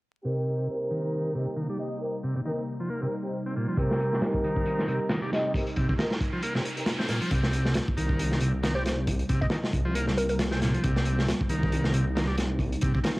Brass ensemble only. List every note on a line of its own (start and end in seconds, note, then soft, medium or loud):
0.24 0.66 C4 medium
0.24 0.66 D#4 medium
0.24 0.66 G4 medium
0.24 0.66 A#4 medium
0.68 1.32 C4 medium
0.68 1.32 D#4 medium
0.68 1.32 G4 medium
0.68 1.32 A#4 loud
1.34 1.54 C4 medium
1.34 1.54 D#4 medium
1.34 1.54 G4 medium
1.34 1.54 A#4 medium
1.78 1.98 C4 medium
1.78 1.98 D#4 medium
1.78 1.98 G4 medium
1.78 1.98 D#5 loud
2.01 2.14 C4 medium
2.01 2.14 D#4 medium
2.01 2.14 G4 medium
2.01 2.14 A#4 medium
2.45 2.58 C4 medium
2.45 2.58 D#4 medium
2.45 2.58 G4 medium
2.45 2.58 A#4 medium
3.01 3.12 C4 medium
3.01 3.12 D#4 medium
3.01 3.12 G4 medium
3.01 3.12 A#4 medium
3.23 3.34 C4 medium
3.23 3.34 D#4 medium
3.23 3.34 G4 medium
3.23 3.34 C5 medium
3.77 4.19 C4 medium
3.77 4.19 D#4 medium
3.77 4.19 G4 medium
3.77 4.19 A#4 loud
4.21 4.85 C4 loud
4.21 4.85 D#4 medium
4.21 4.85 G4 medium
4.21 4.85 A#4 loud
4.88 5.07 C4 medium
4.88 5.07 D#4 medium
4.88 5.07 G4 medium
4.88 5.07 A#4 medium
5.32 5.51 C4 medium
5.32 5.51 D#4 medium
5.32 5.51 G4 medium
5.32 5.51 D#5 loud
5.54 5.67 C4 medium
5.54 5.67 D#4 medium
5.54 5.67 G4 medium
5.54 5.67 A#4 medium
5.98 6.11 C4 medium
5.98 6.11 D#4 medium
5.98 6.11 G4 medium
5.98 6.11 A#4 medium
6.54 6.65 C4 medium
6.54 6.65 D#4 medium
6.54 6.65 G4 medium
6.54 6.65 A#4 medium
6.76 6.87 C4 medium
6.76 6.87 D#4 medium
6.76 6.87 G4 medium
6.76 6.87 A#4 medium